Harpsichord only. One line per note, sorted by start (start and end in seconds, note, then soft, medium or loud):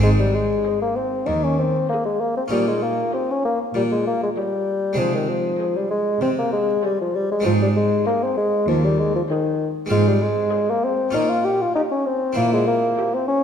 0.00 0.52 G#2 soft
0.00 2.45 G#3 soft
0.00 2.46 C4 soft
0.00 2.47 D#4 soft
1.27 1.76 D#2 soft
2.48 3.00 A#2 soft
2.48 4.92 C#4 soft
2.48 4.93 D#4 soft
3.74 4.23 A#2 soft
4.93 7.38 G#3 soft
4.93 7.39 C4 soft
4.93 7.40 D#4 soft
4.97 5.46 C3 soft
6.21 6.70 C3 soft
7.40 9.84 G#3 soft
7.40 9.85 C4 soft
7.40 9.86 D#4 soft
7.45 7.93 G#2 soft
8.68 9.16 D#2 soft
9.86 11.08 G#3 soft
9.86 11.08 C4 soft
9.86 11.09 F4 soft
9.91 10.39 G#2 soft
11.11 11.62 A#2 soft
11.11 12.31 C#4 soft
11.11 12.32 F4 soft
12.33 12.84 A#2 soft
12.33 13.44 C4 soft
12.33 13.44 E4 soft